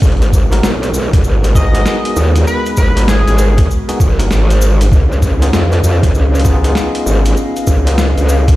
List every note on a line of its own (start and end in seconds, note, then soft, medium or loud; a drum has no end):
0.00 0.61 G#1 loud
0.00 4.88 G#3 medium
0.00 4.88 B3 medium
0.00 4.88 F#4 medium
0.00 4.88 A#4 medium
0.00 kick loud
0.00 cabasa medium
0.07 closed hi-hat soft
0.12 closed hi-hat soft
0.17 closed hi-hat soft
0.22 closed hi-hat soft
0.22 cabasa soft
0.33 kick medium
0.33 cabasa loud
0.52 0.69 B3 medium
0.52 0.69 D#4 medium
0.52 0.69 F#4 medium
0.52 0.69 A#4 medium
0.52 closed hi-hat medium
0.52 cabasa soft
0.63 0.92 B1 loud
0.63 snare loud
0.63 snare soft
0.63 cabasa medium
0.83 closed hi-hat soft
0.83 cabasa soft
0.94 1.23 B1 loud
0.94 cabasa medium
1.13 kick loud
1.13 closed hi-hat medium
1.13 cabasa soft
1.24 1.84 G#1 medium
1.24 cabasa medium
1.44 closed hi-hat medium
1.44 cabasa soft
1.55 2.92 B3 loud
1.55 2.92 D#4 medium
1.55 2.92 F#4 medium
1.55 2.92 G#4 loud
1.55 2.16 D#5 loud
1.55 kick loud
1.55 snare soft
1.55 cabasa loud
1.74 closed hi-hat medium
1.74 cabasa soft
1.86 snare loud
1.86 cabasa soft
2.05 closed hi-hat medium
2.16 2.45 D#2 medium
2.16 cabasa medium
2.36 snare soft
2.36 closed hi-hat medium
2.36 cabasa soft
2.47 2.70 B4 loud
2.47 cabasa medium
2.66 closed hi-hat soft
2.66 cabasa soft
2.77 3.25 G#1 medium
2.77 3.01 B4 medium
2.77 kick medium
2.77 cabasa medium
2.97 3.06 B3 medium
2.97 3.06 D#4 medium
2.97 3.06 F#4 medium
2.97 3.06 A#4 medium
2.97 closed hi-hat medium
2.97 cabasa soft
3.08 3.59 G#4 loud
3.08 snare loud
3.08 snare soft
3.08 cabasa medium
3.27 3.68 G#1 medium
3.27 closed hi-hat soft
3.27 cabasa soft
3.38 cabasa medium
3.58 kick loud
3.58 closed hi-hat medium
3.58 cabasa soft
3.71 cabasa medium
3.89 3.98 B3 medium
3.89 3.98 D#4 medium
3.89 3.98 F#4 medium
3.89 3.98 G#4 medium
3.89 closed hi-hat medium
3.89 cabasa soft
4.00 4.29 F#1 medium
4.00 kick loud
4.00 cabasa medium
4.19 4.28 B3 medium
4.19 4.28 D#4 medium
4.19 4.28 F#4 medium
4.19 4.28 A#4 medium
4.19 closed hi-hat medium
4.19 cabasa soft
4.31 4.90 G#1 medium
4.31 snare loud
4.31 cabasa soft
4.50 closed hi-hat medium
4.50 cabasa soft
4.61 snare soft
4.61 cabasa loud
4.81 closed hi-hat medium
4.81 cabasa soft
4.91 5.51 C#2 loud
4.91 8.56 C#4 medium
4.91 8.56 B4 medium
4.91 8.56 D#5 medium
4.91 8.56 F5 medium
4.91 kick loud
4.91 cabasa medium
5.12 cabasa soft
5.22 kick medium
5.22 cabasa medium
5.42 5.58 B3 medium
5.42 5.58 D#4 medium
5.42 5.58 F4 medium
5.42 5.58 G#4 medium
5.42 closed hi-hat medium
5.42 cabasa soft
5.53 5.82 F2 loud
5.53 snare loud
5.53 snare soft
5.53 cabasa soft
5.72 closed hi-hat soft
5.72 cabasa soft
5.84 6.13 F2 loud
5.84 cabasa medium
6.03 kick loud
6.03 closed hi-hat medium
6.03 cabasa soft
6.14 6.74 C#2 medium
6.14 cabasa soft
6.35 cabasa soft
6.40 closed hi-hat medium
6.45 7.82 B3 loud
6.45 7.82 D#4 medium
6.45 7.82 F4 medium
6.45 7.82 G#4 loud
6.45 kick loud
6.45 snare soft
6.45 cabasa loud
6.64 closed hi-hat medium
6.64 cabasa soft
6.75 snare loud
6.75 cabasa soft
6.95 closed hi-hat medium
7.06 7.35 G#1 medium
7.06 cabasa medium
7.25 snare soft
7.25 closed hi-hat medium
7.25 cabasa soft
7.37 cabasa medium
7.56 closed hi-hat soft
7.56 cabasa soft
7.67 8.14 C#2 loud
7.67 kick medium
7.67 cabasa medium
7.87 7.96 B3 medium
7.87 7.96 D#4 medium
7.87 7.96 F4 medium
7.87 7.96 G#4 medium
7.87 closed hi-hat medium
7.87 cabasa soft
7.98 snare loud
7.98 snare soft
7.98 cabasa medium
8.18 8.56 C#2 loud
8.18 closed hi-hat soft
8.18 cabasa soft
8.29 cabasa loud
8.48 kick loud
8.48 closed hi-hat medium
8.48 cabasa soft